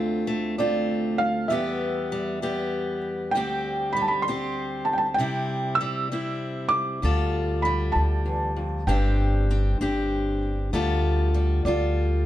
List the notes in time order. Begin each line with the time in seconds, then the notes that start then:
Already playing: D2 D3 A3 C4 F4
0.27 A3
0.58 A3 C4 F4 D5
1.18 F5
1.48 E2 G3 B3 G4 E5
2.12 G3
2.42 G3 B3 G4
3.31 D2 G3 G5
3.36 C4 G4
3.93 G3 B5
4.02 A5
4.08 B5
4.22 C6
4.28 G3 C4 G4
4.85 A5
4.93 G5
4.98 A5
5.14 C3 G5
5.19 G3 C4 E4
5.75 E6
5.81 G3
6.12 G3 C4 E4
6.69 D6
7.02 D2 G3 F4 A4
7.62 G3 B5
7.92 D2 A5
8.26 E2
8.56 F2
8.87 G1 G2 C4 D4 G4 G5
9.51 C4
9.81 G1 C4 D4 G4
10.73 D2 G3 F4 A4
11.34 G3
11.65 D2 G3 F4 A4 D5